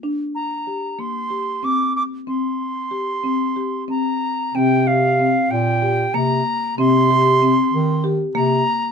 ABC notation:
X:1
M:7/8
L:1/8
Q:1/4=94
K:Cm
V:1 name="Flute"
z b2 c'2 d' d' | c'4- c' b2 | g f2 g2 b2 | c'4 z b2 |]
V:2 name="Marimba"
D2 G B, G C2 | C2 G C G C2 | C G C2 G B,2 | C G C2 G B,2 |]
V:3 name="Bass clarinet" clef=bass
z6 z | z6 z | C,3 B,,2 C, z | C,3 E,2 C, z |]